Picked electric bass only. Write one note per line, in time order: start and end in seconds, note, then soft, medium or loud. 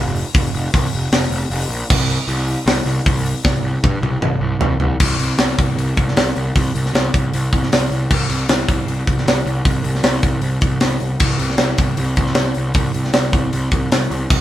0.00 0.22 F1 medium
0.34 0.48 F1 medium
0.53 0.67 F1 medium
0.74 0.87 C2 loud
0.93 1.06 F1 medium
1.12 1.25 F1 medium
1.30 1.44 F1 loud
1.50 1.64 F1 loud
1.69 1.83 A#1 medium
1.90 2.17 C2 loud
2.28 2.55 C2 loud
2.66 2.80 C2 loud
2.85 2.99 C2 loud
3.06 3.32 C2 loud
3.44 3.58 C2 medium
3.63 3.77 C2 medium
3.83 3.97 G2 loud
4.02 4.16 C2 loud
4.21 4.35 C2 loud
4.40 4.54 C2 loud
4.59 4.73 C2 medium
4.80 4.93 C2 medium
5.00 5.15 C2 medium
5.18 5.34 C2 medium
5.38 5.53 C2 loud
5.58 5.73 C2 medium
5.76 5.92 C2 medium
5.97 6.12 C2 medium
6.16 6.31 C2 loud
6.36 6.51 C2 medium
6.55 6.70 C2 medium
6.74 6.89 C2 medium
6.93 7.09 C2 loud
7.14 7.29 C2 medium
7.33 7.48 C2 medium
7.53 7.67 C2 loud
7.72 7.87 C2 loud
7.91 8.06 C2 medium
8.10 8.25 C2 medium
8.29 8.44 C2 medium
8.49 8.64 C2 loud
8.69 8.84 C2 medium
8.86 9.02 C2 medium
9.07 9.22 C2 medium
9.25 9.41 C2 medium
9.45 9.61 C2 medium
9.65 9.80 C2 medium
9.84 9.99 C2 medium
10.03 10.19 C2 loud
10.23 10.38 C2 medium
10.42 10.57 C2 medium
10.62 10.77 C2 medium
10.81 10.96 C2 medium
11.00 11.15 C2 medium
11.20 11.35 C2 medium
11.39 11.54 C2 medium
11.57 11.73 C2 loud
11.78 11.93 C2 medium
11.98 12.13 C2 medium
12.17 12.32 C2 loud
12.36 12.51 C2 loud
12.56 12.71 C2 medium
12.75 12.90 C2 medium
12.93 13.09 C2 medium
13.13 13.29 C2 loud
13.32 13.48 C2 loud
13.52 13.67 C2 medium
13.72 13.87 C2 loud
13.91 14.06 C2 loud
14.10 14.25 C2 medium
14.30 14.41 C2 medium